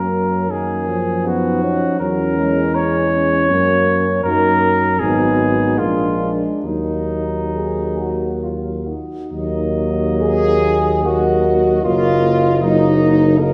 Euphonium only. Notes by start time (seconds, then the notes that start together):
Already playing: A#3
0.51 A#3
1.25 B3
1.63 C#4
2.00 C#4
3.50 A#3
4.25 A#3
5.02 B3
5.78 A#3
6.64 A#3
9.32 A#3
11.05 A#3
11.85 A#3
12.63 A#3
13.40 A#3